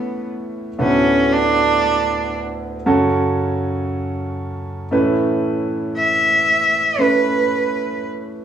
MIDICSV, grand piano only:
0, 0, Header, 1, 2, 480
1, 0, Start_track
1, 0, Key_signature, 3, "major"
1, 0, Tempo, 1034483
1, 365, Time_signature, 4, 2, 24, 8
1, 3919, End_track
2, 0, Start_track
2, 0, Title_t, "Grand piano"
2, 0, Program_c, 0, 0
2, 0, Control_c, 0, 64, 127
2, 0, Note_on_c, 0, 45, 79
2, 0, Note_on_c, 0, 52, 84
2, 0, Note_on_c, 0, 57, 81
2, 0, Note_on_c, 0, 59, 65
2, 0, Note_on_c, 0, 61, 71
2, 0, Note_on_c, 0, 64, 70
2, 0, Note_on_c, 0, 71, 75
2, 316, Note_off_c, 0, 57, 0
2, 316, Note_off_c, 0, 59, 0
2, 316, Note_off_c, 0, 61, 0
2, 318, Note_off_c, 0, 64, 0
2, 320, Note_off_c, 0, 71, 0
2, 345, Note_off_c, 0, 45, 0
2, 345, Note_off_c, 0, 52, 0
2, 364, Note_on_c, 0, 57, 78
2, 365, Note_on_c, 0, 50, 72
2, 366, Note_on_c, 0, 59, 65
2, 368, Note_on_c, 0, 45, 63
2, 368, Note_on_c, 0, 66, 62
2, 369, Note_on_c, 0, 38, 61
2, 370, Note_on_c, 0, 71, 77
2, 371, Control_c, 0, 64, 0
2, 445, Control_c, 0, 64, 127
2, 1276, Note_off_c, 0, 57, 0
2, 1277, Note_off_c, 0, 50, 0
2, 1277, Note_off_c, 0, 59, 0
2, 1279, Note_off_c, 0, 66, 0
2, 1279, Note_off_c, 0, 71, 0
2, 1308, Note_off_c, 0, 38, 0
2, 1308, Note_off_c, 0, 45, 0
2, 1327, Note_on_c, 0, 42, 69
2, 1327, Note_on_c, 0, 61, 86
2, 1329, Note_on_c, 0, 66, 82
2, 1330, Note_on_c, 0, 49, 73
2, 1331, Control_c, 0, 64, 0
2, 1331, Note_on_c, 0, 69, 92
2, 1419, Control_c, 0, 64, 127
2, 2238, Note_off_c, 0, 61, 0
2, 2239, Note_off_c, 0, 66, 0
2, 2240, Note_off_c, 0, 69, 0
2, 2267, Note_off_c, 0, 42, 0
2, 2269, Note_off_c, 0, 49, 0
2, 2279, Note_on_c, 0, 57, 75
2, 2283, Note_on_c, 0, 45, 73
2, 2283, Note_on_c, 0, 52, 65
2, 2283, Note_on_c, 0, 61, 66
2, 2285, Note_on_c, 0, 64, 78
2, 2286, Note_on_c, 0, 71, 91
2, 2290, Control_c, 0, 64, 0
2, 2373, Control_c, 0, 64, 127
2, 3194, Note_off_c, 0, 57, 0
2, 3196, Note_off_c, 0, 61, 0
2, 3197, Note_off_c, 0, 64, 0
2, 3197, Note_off_c, 0, 71, 0
2, 3240, Note_on_c, 0, 57, 62
2, 3242, Note_on_c, 0, 61, 66
2, 3245, Note_on_c, 0, 64, 64
2, 3248, Note_on_c, 0, 71, 71
2, 3919, Note_off_c, 0, 45, 0
2, 3919, Note_off_c, 0, 52, 0
2, 3919, Note_off_c, 0, 57, 0
2, 3919, Note_off_c, 0, 61, 0
2, 3919, Note_off_c, 0, 64, 0
2, 3919, Note_off_c, 0, 71, 0
2, 3919, End_track
0, 0, End_of_file